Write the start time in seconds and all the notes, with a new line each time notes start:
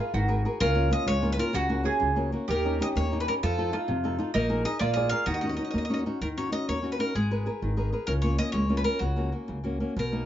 Already playing: F4
0.00 G#4 A#4 B4
0.14 G#1 D#3 F#4
0.28 G#4 A#4 B4
0.45 G#4 A#4 B4
0.60 C#2 C#3 F4 A#4
0.75 A#3 C#4 F4
0.91 A#3 C#4 F4 D#5
1.06 C#2 G#3 C#5
1.22 A#3 C#4 F4
1.32 B4
1.37 A#3 C#4 F4 A#4
1.53 C#2 C#3 F#4
1.69 A#3 C#4 F#4
1.83 A#3 C#4 F#4 G#4
2.00 C#2 C#3
2.16 A#3 C#4 F#4
2.32 A#3 C#4 F#4
2.48 D#2 D#3 G4 A#4
2.65 C#4 D#4 G4
2.80 C#4 D#4 G4 D#5
2.96 D#2 A#3 C#5
3.12 C#4 D#4 G4
3.20 B4
3.28 C#4 D#4 G4 A#4
3.43 F2 F3 F4 A4
3.58 D#4 F4 A4
3.73 D#4 F4 A4
3.88 F2 C3
4.04 D#4 F4 A4
4.19 D#4 F4 A4
4.34 A#1 A#3 D#4 A#4
4.49 D#4 G#4 A#4
4.65 D#4 G#4 A#4 D#5
4.79 A#1 A#3 F4 D5
4.94 G#4 A#4 D5 D#5
5.09 G#4 A#4 D5 F5
5.26 D#2 D#3 F#4 D#5
5.34 D#5
5.41 C#4 D#4 F#4 D#5
5.49 D#5
5.57 C#4 D#4 F#4 D#5
5.64 D#5
5.71 D#2 A#3 D#5
5.78 D#5
5.85 D#5
5.90 C#4 D#4 F#4
5.94 D#5
6.06 C#4 D#4 F#4
6.21 D#2 D#3 A#4
6.37 C#4 D#4 F#4 C#5
6.52 C#4 D#4 F#4 D#5
6.69 D#2 A#3 C#5
6.82 C#4 D#4 F#4
6.92 B4
6.99 C#4 D#4 F#4 A#4
7.15 G#1 G#3 G#4
7.31 G#4 A#4 B4
7.46 G#4 A#4 B4
7.62 G#1 D#3
7.77 G#4 A#4 B4
7.92 G#4 A#4 B4
8.07 C#2 C#3 A#4
8.22 A#3 C#4 F4 C#5
8.38 A#3 C#4 F4 D#5
8.52 C#2 G#3 C#5
8.69 A#3 C#4 F4
8.77 B4
8.84 A#3 C#4 F4 A#4
8.99 C#2 C#3 F#4
9.16 A#3 C#4 F#4
9.32 A#3 C#4 F#4
9.48 C#2 C#3
9.64 A#3 C#4 F#4
9.80 A#3 C#4 F#4
9.97 B1 B2 A#4
10.12 A#3 B3 D#4